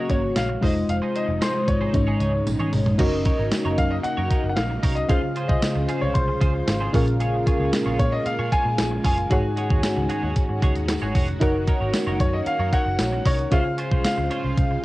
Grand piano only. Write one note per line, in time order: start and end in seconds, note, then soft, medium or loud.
0.00 0.11 D#5 medium
0.10 0.37 C#5 medium
0.36 0.63 F5 medium
0.63 0.90 D#5 medium
0.89 0.95 F5 medium
1.16 1.40 D#5 medium
1.42 1.66 C5 medium
1.68 2.43 C#5 medium
3.78 3.92 F5 loud
3.91 3.96 D#5 loud
4.03 4.46 F#5 loud
4.50 4.57 F#5 medium
4.56 4.97 F5 loud
4.95 5.10 D#5 loud
5.09 5.50 F5 loud
5.48 6.03 D#5 loud
6.01 6.15 C#5 medium
6.14 6.90 C5 medium
7.99 8.13 C#5 medium
8.12 8.26 D#5 loud
8.25 8.50 F5 loud
8.52 9.04 G#5 loud
9.05 10.59 G#5 medium
12.21 12.34 C#5 medium
12.34 12.39 D#5 medium
12.47 12.74 F5 loud
12.73 13.27 F#5 loud
13.26 13.53 C#5 medium
13.52 14.03 F5 loud
14.05 14.85 F5 medium